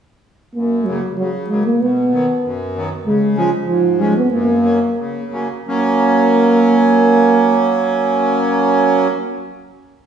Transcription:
0.54 F#2 A#3
0.85 C#3 F#3 A#3
1.17 C#3 F#3
1.48 C#3 F#3 G#3 A#3
1.65 A#3
1.81 B2 B3
2.13 D#3 F#3 B3
2.44 F#2
2.76 D#3 F#3 B3
3.06 C#3 G#3
3.37 F3 G#3 C#4
3.68 G#2 F3
3.99 F3 G#3 C#4
4.17 B3
4.31 F#2 A#3
4.63 F#3 A#3 C#4
4.98 C#3
5.32 F#3 A#3 C#4
5.67 F#3 A#3 C#4

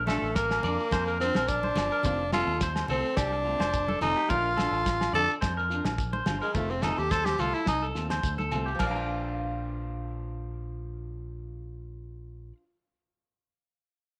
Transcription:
Already playing: A#1
0.07 A3 D4 F4 A4, snare, high conga, low agogo, shekere
0.22 A1, shekere
0.35 A#3 A#4, kick, snare, shekere
0.51 snare, low agogo
0.63 F2 D4 F4 D5, low conga, shekere
0.80 shekere
0.91 F2 C5, kick, snare, high conga, low agogo, shekere
1.07 A#4, shekere
1.20 C4 D4 F4, snare, shekere
1.35 A#1 A#4, snare, high conga, low agogo
1.48 D4, kick, shekere
1.63 C5, high conga
1.75 G1 F4, muted steel-string acoustic guitar stroke, snare, low conga, low agogo, shekere
1.91 A#4, shekere
2.03 F1 D#3 C4 F4, muted steel-string acoustic guitar stroke, muted clean electric guitar stroke, kick, low conga, shekere
2.32 A3 C4 F4 A4, muted steel-string acoustic guitar stroke, snare, high conga, low agogo, shekere
2.47 D#2, shekere
2.61 C5, kick, snare, shekere
2.76 snare, low agogo
2.88 C2 A3 C4 F4 A4, low conga, shekere
3.05 shekere
3.17 C2 D4 G4, kick, snare, high conga, low agogo, shekere
3.33 muted clean electric guitar stroke, shekere
3.44 A3 C4 F4
3.60 F1 C5, snare, high conga, low agogo
3.73 kick, shekere
3.88 A4, high conga
4.01 F1 A3 C4 D#4 F4, low conga, low agogo, shekere
4.16 G4
4.28 A#1 A3 D4 F4 A#4, kick, low conga, shekere
4.57 F4 A4, snare, high conga, low agogo, shekere
4.61 D4
4.71 A1, shekere
4.86 kick, snare, shekere
5.01 snare, low agogo
5.13 F2 D4 F4 A4 D5, low conga
5.30 shekere
5.41 F2 C5, kick, snare, high conga, low agogo, shekere
5.57 A#4, shekere
5.70 D4 F4, shekere
5.84 A#1, snare, high conga, low agogo
5.98 kick, shekere
6.13 C5, high conga
6.26 G1 D4 F4, snare, low conga, low agogo, shekere
6.42 G#3 A#4, shekere
6.54 F1 D#3 A3 C4 F4, muted clean electric guitar stroke, kick, low conga, shekere
6.70 C4, shekere
6.82 A3 C4 D#4 F4 A4, snare, high conga, low conga, low agogo, shekere
6.98 D#2 G4, shekere
7.11 A4 C5, kick, snare, shekere
7.25 G4, snare, low agogo, shekere
7.39 C2 A3 F4 A4, muted steel-string acoustic guitar stroke, low conga, shekere
7.54 E4, shekere
7.66 C2 D#4, muted clean electric guitar stroke, kick, snare, high conga, low agogo, shekere
7.82 A4, shekere
7.95 D#2 A3 C4 F4, snare, shekere
8.10 C5, snare, high conga, low agogo, shekere
8.23 D2, kick, shekere
8.38 A4, high conga, shekere
8.52 C2 C4 F4, low conga, low agogo, shekere
8.56 A3
8.66 G4, shekere
8.75 F3
8.79 A#1 A#4 D5, kick, crash, high conga, low agogo, shekere
8.87 D4 F5 A#5
8.96 F4

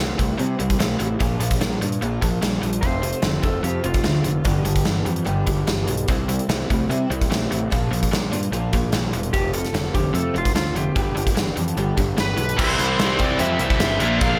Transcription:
Already playing: E3 G3
0.00 C2 C3 A3 C4 E4
0.18 C2 C3 G3 A3 C4 E4, kick, closed hi-hat
0.38 C3 E3 G3 C4 E4, closed hi-hat
0.59 C2 C3 G3 C4 E4, closed hi-hat
0.70 kick, closed hi-hat
0.79 A#1 C3 E3 G3 A3 C4 E4, snare, closed hi-hat
0.99 A1 C3 G3 A3 C4 E4, closed hi-hat
1.19 A#1 A#2 D3 F3 A#3 D4 F4, kick, closed hi-hat
1.40 A#1 A#2 F3 A#3 D4 F4, closed hi-hat
1.51 kick, snare, closed hi-hat
1.61 A#1 A#2 D3 G3 A#3 D4 F4, snare, closed hi-hat
1.81 G2 A#2 G3 A#3 D4 F4, closed hi-hat
1.92 closed hi-hat
2.01 A#1 A#2 D3 F3 A#3 D4 F4, closed hi-hat
2.21 A#1 A#2 F3 A#3 D4 F4, kick, closed hi-hat
2.42 A#1 A#2 D3 G3 A#3 D4 F4, snare, closed hi-hat
2.62 A#1 A#2 G3 A#3 D4 F4, closed hi-hat
2.73 closed hi-hat
2.81 F1 F2 C3 F3 A3 C4 F4 C5, kick, closed hi-hat
3.03 F2 C3 F3 A3 C4 F4, closed hi-hat
3.13 closed hi-hat
3.22 F1 F2 D3 F3 A3 C4, snare, closed hi-hat
3.27 F4
3.43 F1 F2 D3 A3 C4 F4 A4, kick, closed hi-hat
3.47 F3
3.63 F2 C3 F3 A3 C4 F4 G4, closed hi-hat
3.84 F1 F2 C3 F3 A3 C4 F4, closed hi-hat
3.94 kick, closed hi-hat
4.04 D2 F2 D3 F3 A3 C4 F4, snare, closed hi-hat
4.24 F1 F2 D3 F3 A3 C4 F4, closed hi-hat
4.44 G1 G2 D3 G3 B3 D4 G4, kick, closed hi-hat
4.64 G1 G2 D3 G3 B3 D4 G4, closed hi-hat
4.76 kick, closed hi-hat
4.84 G1 G2 E3 G3 B3 D4 G4, snare, closed hi-hat
5.05 F2 G2 E3 G3 B3 D4 G4, closed hi-hat
5.16 closed hi-hat
5.24 G1 G2 D3 G3 B3 D4 G4, closed hi-hat
5.46 G1 G2 D3 G3 B3 D4 G4, kick, closed hi-hat
5.66 G1 G2 E3 G3 B3 D4 G4, snare, closed hi-hat
5.87 B1 G2 E3 G3 B3 D4 G4, closed hi-hat
5.97 closed hi-hat
6.08 C2 C3 E3 G3 C4 E4, kick, closed hi-hat
6.29 C3 G3 C4 E4, closed hi-hat
6.39 closed hi-hat
6.49 C2 C3 E3 G3 A3 C4 E4, snare, closed hi-hat
6.70 C2 C3 G3 A3 C4 E4, kick, closed hi-hat
6.89 C3 E3 G3 C4 E4, closed hi-hat
7.10 C2 C3 G3 C4 E4, closed hi-hat
7.21 kick, closed hi-hat
7.30 A#1 C3 E3 G3 A3 C4 E4, snare, closed hi-hat
7.51 A1 C3 G3 A3 C4 E4, closed hi-hat
7.70 A#1 A#2 D3 F3 A#3 D4 F4, kick, closed hi-hat
7.91 A#1 A#2 F3 D4 F4, closed hi-hat
7.95 A#3
8.03 kick, closed hi-hat
8.11 A#1 A#2 D3 G3 A#3 D4 F4, snare, closed hi-hat
8.32 G2 A#2 G3 A#3 D4 F4, closed hi-hat
8.43 closed hi-hat
8.52 A#1 A#2 D3 F3 A#3 D4 F4, closed hi-hat
8.73 A#1 A#2 F3 A#3 D4 F4, kick, closed hi-hat
8.92 A#1 A#2 D3 G3 A#3 D4 F4, snare, closed hi-hat
9.13 E1 A#2 G3 A#3 D4 F4, closed hi-hat
9.23 closed hi-hat
9.33 F1 F2 C3 F3 A3 C4 F4 G4, kick, closed hi-hat
9.53 F2 C3 F3 A3 C4 F4 A4, closed hi-hat
9.65 snare, closed hi-hat
9.73 F1 F2 D3 F3 A3 C4, snare, closed hi-hat
9.77 F4
9.94 F1 F2 D3 F3 A3 C4 F4 G4, kick, closed hi-hat
10.13 F2 C3 F3 A3 C4 F4 A4, closed hi-hat
10.34 F1 F2 C3 A3 C4 F4, closed hi-hat
10.38 F3
10.45 kick, closed hi-hat
10.55 D2 F2 D3 F3 A3 C4 F4, snare, closed hi-hat
10.74 F1 F2 D3 A3 C4 F4 G4, closed hi-hat
10.79 F3
10.95 G1 G2 D3 G3 B3 D4 G4, kick, closed hi-hat
11.15 G1 G2 D3 B3 D4 G4, closed hi-hat
11.20 G3
11.27 kick, closed hi-hat
11.35 G1 G2 E3 G3 B3 D4 G4, snare, closed hi-hat
11.56 F2 G2 E3 G3 B3 D4 G4, closed hi-hat
11.68 closed hi-hat
11.76 G1 G2 D3 G3 B3 D4 G4, closed hi-hat
11.97 G1 G2 D3 G3 B3 D4 G4, kick, closed hi-hat
12.17 G1 G2 E3 G3 B3 D4 G4 B4, snare, closed hi-hat
12.37 B1 G2 E3 G3 B3 D4 G4, closed hi-hat
12.49 closed hi-hat
12.57 C2 C3 E3 G3 C4 E4 G4 C5, kick, crash
12.79 C2 G3 C4 G4, closed hi-hat
12.98 C2 E3 G3 C4 G4, snare, closed hi-hat
13.18 C2 C3 G3 C4 G4 D5, kick, closed hi-hat
13.38 F2 C3 E3 G3 C4 G4 E5, closed hi-hat
13.59 C2 G3 C4 G4 E5, closed hi-hat
13.70 kick
13.80 G1 C3 E3 G3 C4 G4, snare, closed hi-hat
14.00 A#1 A#2 D3 F3 A#3 D4 F4, closed hi-hat
14.21 A#1 A#2 D3 A#3 D4 F4 F5, kick, closed hi-hat

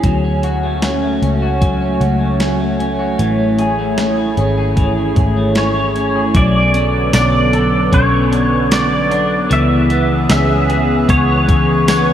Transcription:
Already playing: B3 C#4 G#4
0.03 D2 F#3 A3 C#4 F#4 C#5, kick, closed hi-hat
0.24 C#4
0.43 F#4, closed hi-hat
0.63 A3
0.82 C#4, snare, closed hi-hat
1.03 A3
1.22 C#2 C#4, closed hi-hat
1.42 F#4
1.61 F#3, kick, closed hi-hat
1.81 C#4
2.00 C#2 F#4, closed hi-hat
2.20 A3
2.40 C#4, snare, closed hi-hat
2.60 A3
2.80 C#4, closed hi-hat
2.99 F#4
3.19 A1 E3 E4 G#4, closed hi-hat
3.39 C#4
3.59 G#4, closed hi-hat
3.79 A3
3.98 C#4, snare, closed hi-hat
4.18 A3
4.37 G#1 C#4, closed hi-hat
4.58 G#4
4.77 E3, kick, closed hi-hat
4.97 C#4
5.16 G#1 G#4, kick, closed hi-hat
5.37 A3
5.55 C#4 C#5, snare, closed hi-hat
5.76 A3
5.96 C#4, closed hi-hat
6.16 G#4
6.35 B1 D3 F#3 B3 A4 B4 D5, kick, closed hi-hat
6.74 C#4, closed hi-hat
7.13 B1 D4 D5, snare, closed hi-hat, tambourine
7.53 A4, closed hi-hat
7.92 B1 C#4 C#5, kick, closed hi-hat
8.32 D4, closed hi-hat
8.71 D5, snare, closed hi-hat, tambourine
9.11 D4, closed hi-hat
9.50 C#2 C#3 E3 G#4 E5, closed hi-hat
9.90 B3, closed hi-hat
10.30 C#2 C#4 E5, snare, closed hi-hat, tambourine
10.69 G#4, closed hi-hat
11.08 C#2 B3 C#5, kick, closed hi-hat
11.49 C#4, kick, closed hi-hat
11.88 B3 C#5, snare, closed hi-hat, tambourine

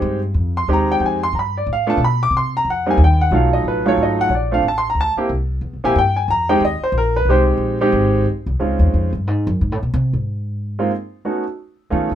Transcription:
Already playing: G#3 C4 D#4 G4
0.02 G2
0.34 F2
0.57 C6
0.68 D#2 G#3 C4 D#4 G4
0.73 A#5
0.92 G5
1.00 F2 G5
1.06 G#5
1.23 C6
1.33 G2 A#5
1.39 B5
1.57 D5
1.67 A2
1.73 F5
1.87 A3 B3 D4 F4 A5
1.97 B2
2.04 B5
2.23 D6
2.31 C3
2.37 C6
2.57 A#5
2.65 F2
2.70 F#5
2.86 G3 A#3 C4 D#4
2.90 G#5
2.97 D#2
3.04 G5
3.21 F#5
3.31 B1 F#3 A3 D#4 F4
3.35 F5
3.53 D#5
3.64 A1 B4
3.86 F#3 A3 D#4 F4 C#5
3.97 G#1
4.03 D#5
4.21 F#5
4.29 A#1 C#5
4.35 D5
4.51 A3 C4 D4 F4 F5
4.62 A1
4.68 A5
4.78 C6
4.90 A#5
4.95 D2
5.01 A5
5.17 A#3 C4 E4 G4, muted upright bass stroke
5.29 C2
5.61 E2
5.73 C2
5.84 A#1 A#3 C4 E4 G4 G#5
5.95 G2 G5
6.16 G#5
6.28 F2 A#5
6.49 G#3 C4 D#4 G4 G5
6.60 D#2
6.65 D#5
6.81 C5, muted upright bass stroke
6.92 A#1
6.98 A#4
7.16 B4
7.25 C2 G#3
7.29 C4 D#4 G4 C5
7.57 A#1
7.81 G#3 C4 D#4 G4
7.92 G#1
8.46 C2
8.60 C#2 G#3 C4 C#4 D#4 F4
8.79 E2
8.94 F2
9.13 G2
9.27 G#2
9.47 F#2
9.61 G#2
9.72 A2
9.83 B2
9.94 C3
10.13 G#2
10.79 G#3 A#3 C4 D#4 F4
11.25 A3 B3 C#4 D#4 F#4
11.90 D#3 A3 B3 C#4 D#4 F4
12.11 D3

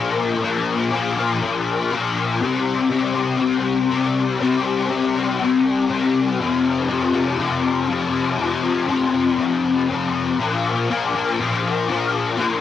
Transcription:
Already playing: A#2 F3 A#3
0.42 A#2 F3 A#3
0.91 A#2 F3 A#3
1.17 F3 A#3
1.42 A#2 F3 A#3
1.91 A#2 F3 A#3
2.41 C3 G3 C4
2.89 C3 G3 C4
3.13 G3 C4
3.38 C3 G3 C4
3.90 C3 G3 C4
4.40 C3 G3 C4
4.89 C3 G3 C4
5.15 G3 C4
5.40 C3 G3 C4
5.90 C3 G3 C4
6.39 F2 C3 F3
6.89 F2 C3 F3
7.13 C3 F3
7.38 F2 C3 F3
7.88 F2 C3 F3
8.38 F2 C3 F3
8.88 F2 C3 F3
9.13 C3 F3
9.39 F2 C3 F3
9.90 F2 C3 F3
10.39 A#2 F3 A#3
10.89 A#2 F3 A#3
11.14 F3 A#3
11.39 A#2 F3 A#3
11.88 A#2 F3 A#3
12.37 A#2 F3 A#3

